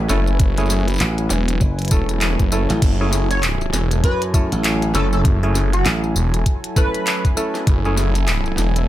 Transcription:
Already playing: F#3 E4 B4 G#5
0.09 F#1 A3 C#4 E4 A4, snare, tambourine
0.27 tambourine
0.40 kick, closed hi-hat, tambourine
0.58 A3 C#4 E4 G#4, closed hi-hat, tambourine
0.60 tambourine
0.66 tambourine
0.70 snare, tambourine
0.80 tambourine
0.88 closed hi-hat, tambourine
0.90 tambourine
0.94 tambourine
0.96 tambourine
0.98 clap, closed hi-hat, tambourine
1.00 A1, tambourine
1.18 closed hi-hat, tambourine
1.30 E1, snare, tambourine
1.48 closed hi-hat, tambourine
1.61 F#1, kick, tambourine
1.79 closed hi-hat, tambourine
1.82 closed hi-hat
1.85 closed hi-hat
1.88 E1 A3 C#4 E4 A4, kick, closed hi-hat, tambourine
2.09 closed hi-hat, tambourine
2.21 clap, closed hi-hat, tambourine
2.40 F#1, kick, closed hi-hat, tambourine
2.52 A3 C#4 E4 A4, tambourine
2.70 A1, snare, closed hi-hat, tambourine
2.82 F#1 A4, kick, closed hi-hat, tambourine, crash
3.01 A3 C#4 E4 G#4
3.13 snare, tambourine
3.31 C#5, closed hi-hat, tambourine
3.43 clap, closed hi-hat, tambourine
3.61 tambourine
3.73 E1, snare, tambourine
3.91 closed hi-hat, tambourine
4.04 F#2 B4, kick, closed hi-hat, tambourine
4.22 closed hi-hat, tambourine
4.34 A3 C#4 E4 A4, kick, tambourine
4.52 A1, closed hi-hat, tambourine
4.64 clap, closed hi-hat, tambourine
4.82 closed hi-hat, tambourine
4.95 F#1 A3 C#4 E4 A4, snare, tambourine
5.13 A4, tambourine
5.25 kick, closed hi-hat, tambourine
5.43 A3 C#4 E4 G#4, tambourine
5.55 snare, tambourine
5.73 F#4, closed hi-hat, tambourine
5.86 A1, clap, closed hi-hat, tambourine
6.04 tambourine
6.16 E1, tambourine
6.34 closed hi-hat, tambourine
6.46 kick, closed hi-hat, tambourine
6.64 closed hi-hat, tambourine
6.76 A3 C#4 E4 A4 B4, kick, tambourine
6.95 closed hi-hat, tambourine
7.07 clap, closed hi-hat, tambourine
7.25 kick, closed hi-hat, tambourine
7.37 A3 C#4 E4 A4, tambourine
7.55 snare, tambourine
7.67 F#1, kick, closed hi-hat, tambourine
7.85 A3 C#4 E4 G#4, tambourine
7.97 snare, tambourine
8.15 closed hi-hat, tambourine
8.28 clap, closed hi-hat, tambourine
8.46 tambourine
8.58 E1, snare, tambourine
8.76 closed hi-hat, tambourine

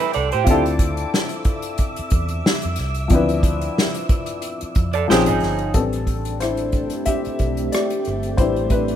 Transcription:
Already playing: G3 C4 D4 E4 A4 G5 C6 D6
0.00 E4 B4
0.13 C2 A4 D5, closed hi-hat
0.32 A2 G4 C5, closed hi-hat
0.44 D2 C4 D4 F4 E5 E6, kick, closed hi-hat
0.49 E4 A4
0.66 closed hi-hat
0.79 kick, closed hi-hat
0.97 closed hi-hat
1.14 snare
1.29 closed hi-hat
1.45 kick, closed hi-hat
1.62 closed hi-hat
1.78 kick, closed hi-hat
1.96 muted fingered electric bass stroke, closed hi-hat
2.10 E2, kick, closed hi-hat
2.28 closed hi-hat
2.46 snare
2.62 F2, closed hi-hat
2.76 C2, snare, closed hi-hat
2.94 closed hi-hat
3.08 D2 F3 C4 D4, kick, closed hi-hat
3.13 E4 B4
3.29 closed hi-hat
3.43 kick, closed hi-hat
3.61 closed hi-hat
3.78 snare
3.94 closed hi-hat
4.09 kick, closed hi-hat
4.26 closed hi-hat
4.42 closed hi-hat
4.61 muted fingered electric bass stroke, closed hi-hat
4.75 F2, kick, closed hi-hat
4.93 A4 D5, closed hi-hat
5.08 A#1 F3 C4 C#4 D#4 G4 G#4 C5, snare
5.26 G#1 D#4 G#4, closed hi-hat
5.40 G1, snare, open hi-hat
5.59 closed hi-hat
5.74 A1 G3 A3 C4 D4 G4 A4 B4, kick, closed hi-hat
5.93 closed hi-hat
6.07 kick, closed hi-hat
6.25 closed hi-hat
6.40 E4 C5, cross-stick, closed hi-hat
6.57 closed hi-hat
6.72 kick, closed hi-hat
6.90 cross-stick, closed hi-hat
7.05 G4 E5, kick, closed hi-hat
7.25 muted fingered electric bass stroke, closed hi-hat
7.39 B1, kick, closed hi-hat
7.57 closed hi-hat
7.72 G4 D5, cross-stick, closed hi-hat
7.90 closed hi-hat
8.05 G1, cross-stick, closed hi-hat
8.23 closed hi-hat
8.37 A1 G3 C4 D4 E4 B4 C5 E5, kick, closed hi-hat
8.56 closed hi-hat
8.70 D4 B4, kick, closed hi-hat
8.88 closed hi-hat

